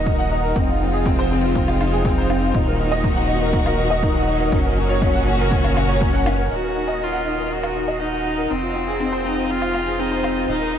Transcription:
Already playing: analog synth bass D#1, string quartet A#2 D#3 F#3 D#4 F#4, upright piano D#4 A#4 D#5 F#5
0.06 upright piano D#4, kick
0.19 upright piano F#5
0.31 upright piano D#4
0.43 upright piano A#4
0.56 analog synth bass F1, string quartet C3 F3 G#3 D#4 F4, upright piano C4, kick
0.69 upright piano F4
0.81 upright piano C4
0.93 upright piano G#4
1.06 upright piano C4, kick
1.19 upright piano C5
1.31 upright piano C4
1.44 upright piano F4
1.55 upright piano C4, kick
1.68 upright piano F4, low woodblock
1.81 upright piano C4, low woodblock
1.93 upright piano G#4
2.05 upright piano C4, kick
2.18 upright piano C5
2.30 upright piano C4, low woodblock
2.43 upright piano F4
2.54 analog synth bass D#1, string quartet A#2 D#3 F#3 F#4, upright piano D#4, kick
2.67 upright piano A#4
2.79 upright piano D#4
2.91 upright piano D#5
3.04 upright piano D#4, kick
3.16 upright piano F#5
3.28 upright piano D#4
3.41 upright piano A#4
3.53 upright piano D#4, kick
3.65 upright piano A#4, low woodblock
3.77 upright piano D#4
3.90 upright piano D#5
4.02 upright piano D#4, kick
4.15 upright piano F#5
4.27 upright piano D#4
4.40 upright piano A#4
4.51 analog synth bass F#1, string quartet A#2 C#3 C#4 F#4, upright piano C#4, kick
4.65 upright piano A#4
4.77 upright piano C#4
4.89 upright piano C#5
5.02 upright piano C#4, kick
5.15 upright piano F#5
5.27 upright piano C#4
5.40 upright piano A#4
5.52 upright piano C#4, kick
5.64 upright piano A#4, low woodblock
5.76 upright piano C#4, low woodblock
5.89 upright piano C#5
6.01 upright piano C#4, kick
6.14 upright piano F#5
6.26 upright piano C#4, low woodblock
6.38 upright piano A#4
6.51 analog synth bass D#1, string quartet A#2 D#3 F#3 D#4 A#4, upright piano D#4, viola F#4
6.63 upright piano A#4
6.75 upright piano D#4
6.88 upright piano D#5
7.01 upright piano D#4, viola F4
7.13 upright piano F#5
7.26 upright piano D#4
7.38 upright piano A#4
7.50 upright piano D#4, viola F#4
7.63 upright piano A#4, low woodblock
7.75 upright piano D#4
7.88 upright piano D#5
8.00 upright piano D#4, viola D#4
8.13 upright piano F#5
8.25 upright piano D#4
8.38 upright piano A#4
8.50 analog synth bass F1, string quartet C3 F3 G#3 F4, upright piano C4, viola C4
8.63 upright piano F4
8.75 upright piano C4
8.88 upright piano G#4
9.00 upright piano C4
9.12 upright piano C5
9.25 upright piano C4, viola D#4
9.37 upright piano F4
9.49 upright piano C4, viola F4
9.61 upright piano F4, low woodblock
9.74 upright piano C4, low woodblock
9.86 upright piano G#4
9.99 upright piano C4, viola D#4
10.11 upright piano C5
10.23 upright piano C4, low woodblock
10.36 upright piano F4
10.48 analog synth bass D#1, string quartet A#2 D#3 F#3 F#4, upright piano D#4, viola D#4
10.60 upright piano A#4
10.72 upright piano D#4

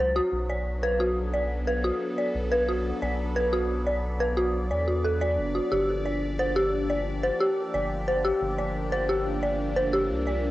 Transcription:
Already playing: analog synth pad F#3 C#4 D#4 A#4 D#5
0.00 analog synth bass C#2, synth bell C5
0.16 synth bell F#4
0.32 analog synth bass B1
0.50 analog synth pad D4, synth bell D5
0.60 analog synth pad B3
0.75 analog synth pad D5
0.83 analog synth pad A4, synth bell B4
1.00 synth bell F#4
1.34 synth bell D5
1.67 synth bell B4
1.84 synth bell F#4
2.18 synth bell D5
2.35 analog synth bass B1
2.52 synth bell B4
2.69 synth bell F#4
3.02 analog synth bass B1, synth bell D5
3.36 synth bell B4
3.53 synth bell F#4
3.87 synth bell D5
4.20 synth bell B4
4.37 synth bell F#4
4.71 analog synth bass E2, synth bell D5
4.88 synth bell F#4
5.04 synth bell A4
5.21 synth bell D5
5.38 analog synth bass F#1
5.55 synth bell F#4
5.72 analog synth bass G1, analog synth pad F3, synth bell G4
5.88 analog synth pad A#3
6.06 synth bell D5
6.39 synth bell C5
6.51 analog synth pad G4
6.56 synth bell G4
6.90 synth bell D5
7.23 synth bell C5
7.40 synth bell G4
7.74 analog synth bass G1, synth bell D5
8.08 synth bell C5
8.25 synth bell G4
8.41 analog synth bass G1
8.58 synth bell D5
8.92 synth bell C5
9.09 synth bell G4
9.43 synth bell D5
9.76 synth bell C5
9.93 synth bell G4
10.10 analog synth bass C2
10.27 synth bell D5

